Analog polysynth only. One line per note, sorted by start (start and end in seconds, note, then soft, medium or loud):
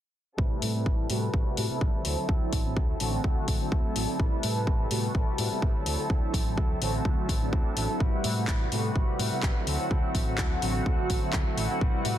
0.38 0.72 C3 medium
0.38 0.72 G3 medium
0.38 0.72 A3 medium
0.38 0.72 E4 medium
0.38 0.72 B4 medium
0.75 1.07 C3 medium
0.75 1.07 G3 medium
0.75 1.08 A3 medium
0.75 1.08 E4 medium
0.75 1.08 B4 medium
1.10 1.31 C3 loud
1.10 1.31 G3 medium
1.10 1.31 A3 medium
1.10 1.31 B3 medium
1.10 1.32 F#4 loud
1.34 1.67 C3 loud
1.34 1.67 G3 medium
1.34 1.67 A3 medium
1.34 1.67 F#4 loud
1.34 1.67 B4 medium
1.70 1.91 C3 loud
1.70 1.91 G3 medium
1.70 1.91 A3 medium
1.70 1.91 B3 medium
1.70 1.91 E4 loud
1.94 2.26 D3 medium
1.94 2.26 F#3 medium
1.94 2.27 A3 medium
1.94 2.27 C4 medium
1.94 2.27 E4 medium
2.29 2.62 D3 medium
2.29 2.62 F#3 medium
2.29 2.62 A3 medium
2.29 2.62 C4 medium
2.29 2.63 E4 medium
2.65 2.98 D3 medium
2.65 2.98 F#3 medium
2.65 2.98 A3 medium
2.65 2.98 C4 medium
2.65 2.98 E4 medium
3.00 3.21 D3 loud
3.00 3.22 F#3 medium
3.00 3.22 A3 medium
3.00 3.22 C4 medium
3.00 3.22 F#4 loud
3.24 3.57 D3 medium
3.24 3.57 F#3 medium
3.24 3.58 A3 medium
3.24 3.58 C4 medium
3.24 3.58 F#4 loud
3.60 3.81 D3 loud
3.60 3.81 F#3 medium
3.60 3.81 A3 medium
3.60 3.81 C4 medium
3.60 3.82 E4 loud
3.84 4.17 D3 medium
3.84 4.17 F#3 medium
3.84 4.17 A3 medium
3.84 4.17 C4 medium
3.84 4.17 E4 medium
4.19 4.53 C3 medium
4.19 4.53 G3 medium
4.19 4.53 A3 medium
4.19 4.53 E4 medium
4.19 4.53 B4 medium
4.55 4.88 C3 medium
4.55 4.88 G3 medium
4.55 4.88 A3 medium
4.55 4.88 E4 medium
4.55 4.88 B4 medium
4.91 5.12 C3 loud
4.91 5.12 G3 medium
4.91 5.12 A3 medium
4.91 5.12 B3 medium
4.91 5.12 F#4 loud
5.15 5.48 C3 medium
5.15 5.48 G3 medium
5.15 5.48 A3 medium
5.15 5.48 F#4 loud
5.15 5.48 B4 medium
5.50 5.72 C3 loud
5.50 5.72 G3 medium
5.50 5.72 A3 medium
5.50 5.72 B3 medium
5.50 5.72 E4 loud
5.74 6.07 D3 medium
5.74 6.07 F#3 medium
5.74 6.07 A3 medium
5.74 6.07 C4 medium
5.74 6.08 E4 medium
6.09 6.43 D3 medium
6.09 6.43 F#3 medium
6.09 6.43 A3 medium
6.09 6.43 C4 medium
6.09 6.43 E4 medium
6.45 6.78 D3 medium
6.45 6.79 F#3 medium
6.45 6.79 A3 medium
6.45 6.79 C4 medium
6.45 6.79 E4 medium
6.81 7.02 D3 loud
6.81 7.02 F#3 medium
6.81 7.02 A3 medium
6.81 7.03 C4 medium
6.81 7.03 F#4 loud
7.04 7.38 D3 medium
7.04 7.38 F#3 medium
7.04 7.38 A3 medium
7.04 7.38 C4 medium
7.04 7.38 F#4 loud
7.41 7.86 D3 medium
7.41 7.86 F#3 medium
7.41 7.86 A3 medium
7.41 7.86 C4 medium
7.41 7.86 D4 medium
7.88 7.99 D3 medium
7.88 7.99 F#3 medium
7.88 7.99 A3 medium
7.88 7.99 C4 medium
7.88 7.99 E4 medium
8.00 8.34 C3 medium
8.00 8.34 G3 medium
8.00 8.34 A3 medium
8.00 8.34 E4 loud
8.00 8.34 B4 medium
8.37 8.69 C3 medium
8.37 8.69 G3 medium
8.37 8.70 A3 medium
8.37 8.70 E4 medium
8.37 8.70 B4 medium
8.72 8.93 C3 medium
8.72 8.93 G3 medium
8.72 8.93 A3 medium
8.72 8.93 B3 medium
8.72 8.94 F#4 loud
8.96 9.29 C3 medium
8.96 9.29 G3 medium
8.96 9.29 A3 medium
8.96 9.29 F#4 loud
8.96 9.29 B4 medium
9.32 9.53 C3 loud
9.32 9.53 G3 medium
9.32 9.53 A3 medium
9.32 9.53 B3 medium
9.32 9.53 E4 loud
9.55 9.88 D3 medium
9.55 9.88 F#3 medium
9.55 9.88 A3 medium
9.55 9.89 C4 medium
9.55 9.89 E4 medium
9.91 10.24 D3 medium
9.91 10.24 F#3 medium
9.91 10.24 A3 medium
9.91 10.24 C4 medium
9.91 10.24 E4 medium
10.27 10.60 D3 medium
10.27 10.60 F#3 medium
10.27 10.60 A3 medium
10.27 10.60 C4 medium
10.27 10.60 E4 medium
10.62 10.83 D3 loud
10.62 10.84 F#3 medium
10.62 10.84 A3 medium
10.62 10.84 C4 medium
10.62 10.84 F#4 loud
10.86 11.20 D3 medium
10.86 11.20 F#3 medium
10.86 11.20 A3 medium
10.86 11.20 C4 medium
10.86 11.20 F#4 loud
11.22 11.43 D3 loud
11.22 11.43 F#3 medium
11.22 11.43 A3 medium
11.22 11.43 C4 medium
11.22 11.43 E4 loud
11.46 11.79 D3 medium
11.46 11.79 F#3 medium
11.46 11.79 A3 medium
11.46 11.79 C4 medium
11.46 11.79 E4 medium
11.81 12.14 C3 medium
11.81 12.15 G3 medium
11.81 12.15 A3 medium
11.81 12.15 E4 loud
11.81 12.15 B4 medium